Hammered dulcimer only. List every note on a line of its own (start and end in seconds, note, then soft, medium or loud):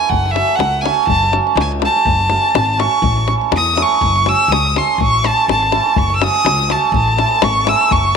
0.33 0.51 A3 soft
0.33 0.51 C#4 soft
0.33 0.51 F#4 soft
0.33 0.52 A4 medium
0.82 1.00 A3 medium
0.82 1.00 C#4 medium
0.82 1.00 F#4 soft
0.82 1.01 A4 medium
1.31 1.49 A3 medium
1.31 1.49 C#4 medium
1.31 1.49 F#4 medium
1.31 1.50 A4 medium
1.79 1.97 A3 medium
1.79 1.98 C#4 soft
1.79 1.98 F#4 soft
1.79 1.99 A4 medium
2.29 2.47 A3 medium
2.29 2.47 C#4 soft
2.29 2.47 F#4 soft
2.29 2.48 A4 medium
2.78 2.95 A3 medium
2.78 2.95 C#4 medium
2.78 2.96 F#4 medium
2.78 2.96 A4 medium
3.26 3.44 A3 soft
3.26 3.45 C#4 soft
3.26 3.45 E4 soft
3.26 3.45 A4 medium
3.75 3.93 A3 medium
3.75 3.94 C#4 medium
3.75 3.94 E4 medium
3.75 3.94 A4 medium
4.25 4.42 A3 medium
4.25 4.42 C#4 medium
4.25 4.43 F#4 medium
4.25 4.43 A4 medium
4.75 4.92 A3 soft
4.75 4.92 C#4 soft
4.75 4.92 F#4 soft
4.75 4.92 A4 medium
5.23 5.40 A3 medium
5.23 5.40 C#4 soft
5.23 5.41 E4 soft
5.23 5.41 A4 medium
5.71 5.89 A3 medium
5.71 5.89 C#4 medium
5.71 5.89 E4 medium
5.71 5.90 A4 medium
6.19 6.37 A3 medium
6.19 6.37 C#4 medium
6.19 6.38 F#4 soft
6.19 6.38 A4 medium
6.68 6.86 A3 medium
6.68 6.86 C#4 soft
6.68 6.86 F#4 medium
6.68 6.86 A4 medium
7.16 7.34 A3 medium
7.16 7.34 C#4 soft
7.16 7.35 E4 soft
7.16 7.35 A4 medium
7.64 7.82 A3 medium
7.64 7.83 C#4 medium
7.64 7.83 E4 medium
7.64 7.84 A4 medium